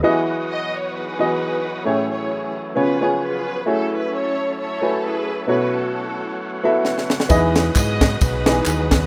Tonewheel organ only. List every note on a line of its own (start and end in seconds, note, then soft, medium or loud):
0.04 2.74 E3 medium
0.04 3.64 F#3 medium
0.04 1.85 B3 medium
0.04 1.84 F#4 medium
0.04 1.84 D#5 medium
1.88 2.77 A3 medium
1.88 5.46 C#4 medium
2.76 3.66 F3 medium
2.76 3.66 B3 medium
3.67 5.47 F#3 medium
3.67 7.26 A3 medium
3.67 5.47 E4 medium
5.49 9.07 F#3 medium
5.49 9.07 B3 medium
5.49 7.29 C#4 medium
5.49 7.28 F#4 medium
7.30 9.07 G#3 medium
7.30 9.07 B4 medium
7.30 9.07 D#5 medium